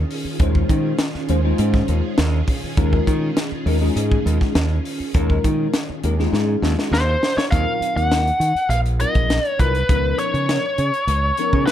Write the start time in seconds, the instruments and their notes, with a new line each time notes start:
Already playing: string machine D#3 C#4 F4 G#4
0.11 open hi-hat
0.25 muted fingered electric bass stroke
0.39 fingered electric bass D#2, tine electric piano G#3 C#4 D#4 F4 C5, kick, closed hi-hat
0.55 kick
0.69 fingered electric bass D#3, kick, closed hi-hat
0.99 snare, closed hi-hat
1.14 muted fingered electric bass stroke, snare
1.29 fingered electric bass D#2, tine electric piano G#3 C#4 D#4 F4 C5, closed hi-hat
1.44 tine electric piano G#3 C#4 D#4 F4 C5
1.58 fingered electric bass G#2, closed hi-hat
1.74 kick, snare
1.88 fingered electric bass D#2, closed hi-hat
2.18 fingered electric bass D#2, snare, closed hi-hat
2.48 kick, open hi-hat
2.64 muted fingered electric bass stroke
2.77 fingered electric bass D#2, tine electric piano G#3 C#4 D#4 F4 A#4, kick, closed hi-hat
2.93 kick
3.07 fingered electric bass D#3, kick, closed hi-hat
3.37 snare, closed hi-hat
3.52 muted fingered electric bass stroke
3.66 fingered electric bass D#2, tine electric piano G#3 C#4 D#4 F4 A#4, open hi-hat
3.81 tine electric piano G#3 C#4 D#4 F4 G#4
3.96 fingered electric bass G#2, closed hi-hat
4.12 kick
4.26 fingered electric bass D#2, closed hi-hat
4.41 kick, snare
4.55 fingered electric bass D#2, snare, closed hi-hat
4.85 open hi-hat
5.00 muted fingered electric bass stroke
5.14 fingered electric bass D#2, tine electric piano G#3 C#4 D#4 F4 A#4, kick, closed hi-hat
5.30 kick
5.44 fingered electric bass D#3, kick, closed hi-hat
5.74 snare, closed hi-hat
5.90 muted fingered electric bass stroke
6.04 fingered electric bass D#2, tine electric piano G#3 C#4 D#4 F4 A#4, closed hi-hat
6.19 tine electric piano G#3 C#4 D#4 F4 G#4, snare
6.32 fingered electric bass G#2, snare
6.62 fingered electric bass D#2, snare
6.79 snare
6.91 fingered electric bass D#2, lead electric guitar C5, snare
7.23 snare
7.37 lead electric guitar C#5, muted fingered electric bass stroke, snare
7.51 fingered electric bass D#2, tine electric piano F#3 C4 D#4 F4 A#4, lead electric guitar F5, kick, closed hi-hat
7.81 muted fingered electric bass stroke, closed hi-hat
7.96 fingered electric bass D#2, lead electric guitar F#5, closed hi-hat
8.12 snare, closed hi-hat
8.27 closed hi-hat
8.40 fingered electric bass D#3, closed hi-hat
8.55 muted fingered electric bass stroke, closed hi-hat
8.69 fingered electric bass A#1, lead electric guitar F5, closed hi-hat
8.86 closed hi-hat
9.00 tine electric piano F#3 C4 D#4 F4 A#4, lead electric guitar D#5, closed hi-hat
9.15 fingered electric bass A#1, kick, closed hi-hat
9.30 snare, closed hi-hat
9.45 lead electric guitar C#5, closed hi-hat
9.59 fingered electric bass C2, tine electric piano F#3 C4 D#4 F4 A#4, lead electric guitar B4, kick, closed hi-hat
9.75 closed hi-hat
9.89 fingered electric bass C#2, tine electric piano F3 B3 C#4 D#4 A#4, kick, closed hi-hat
10.19 lead electric guitar C#5, closed hi-hat
10.34 fingered electric bass C#3, closed hi-hat
10.49 snare, closed hi-hat
10.78 fingered electric bass C#3, closed hi-hat
10.94 closed hi-hat
11.07 fingered electric bass C#2, closed hi-hat
11.37 tine electric piano F3 B3 C#4 D#4 A#4, closed hi-hat
11.53 fingered electric bass C#3, kick
11.66 lead electric guitar B4, snare, closed hi-hat